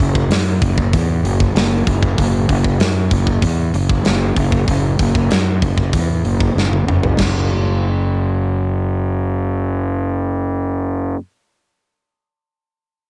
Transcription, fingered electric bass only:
0.00 0.28 F#1 medium
0.30 0.59 F#2 medium
0.62 0.91 F#1 medium
0.93 1.22 E2 medium
1.24 1.53 F#1 medium
1.55 1.84 F#1 medium
1.87 2.16 F#1 medium
2.18 2.47 F#1 medium
2.49 2.78 F#1 medium
2.79 3.09 F#2 medium
3.12 3.41 F#1 medium
3.43 3.72 E2 medium
3.74 4.03 F#1 medium
4.06 4.35 F#1 medium
4.37 4.66 F#1 medium
4.68 4.97 F#1 medium
4.99 5.28 F#1 medium
5.32 5.61 F#2 medium
5.62 5.91 F#1 medium
5.93 6.22 E2 medium
6.25 6.54 F#1 medium
6.55 6.84 F#1 medium
6.86 7.16 F#1 medium
7.19 11.14 F#1 medium

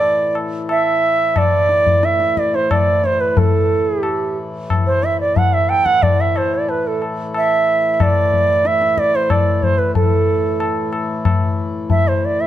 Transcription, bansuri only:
0.00 0.36 D5 loud
0.70 1.39 E5 medium
1.38 2.06 D5 loud
2.05 2.40 E5 loud
2.39 2.57 D5 medium
2.55 2.73 C5 medium
2.71 3.07 D5 medium
3.05 3.22 C5 medium
3.21 3.40 B4 medium
3.38 3.89 A4 medium
3.89 4.01 G#4 medium
4.01 4.37 G4 medium
4.86 5.06 C5 medium
5.04 5.20 E5 medium
5.20 5.38 D5 medium
5.37 5.55 F#5 medium
5.53 5.71 E5 medium
5.69 5.87 G5 loud
5.85 6.04 F#5 loud
6.03 6.22 D5 medium
6.21 6.39 E5 medium
6.37 6.56 C5 medium
6.55 6.71 D5 medium
6.69 6.89 B4 medium
6.87 7.02 A4 medium
7.37 7.94 E5 medium
7.94 8.04 E5 medium
8.02 8.68 D5 medium
8.67 9.00 E5 loud
8.99 9.17 D5 medium
9.16 9.32 C5 medium
9.31 9.65 D5 medium
9.63 9.80 C5 medium
9.78 9.95 B4 medium
9.96 10.90 A4 medium
11.90 12.09 E5 medium
12.08 12.27 C5 medium
12.25 12.42 D5 medium
12.41 12.47 E5 medium

